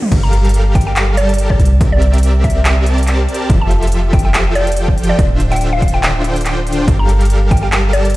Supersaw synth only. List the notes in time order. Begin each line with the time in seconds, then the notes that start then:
0.12 G3 G4 A4 A#4 F5
1.17 G3 G4 A4 A#4 A5
1.81 C4 G4 A#4 D5 E5
2.86 C4 G4 A#4 D5 A5
3.50 F3 F4 G4 A4 E5
4.55 F3 F4 G4 A4 G5
5.19 D3 D4 F4 C5 E5
6.24 D3 D4 F4 C5 G5
6.88 G3 G4 A4 A#4 F5
7.93 G3 G4 A4 A#4 A5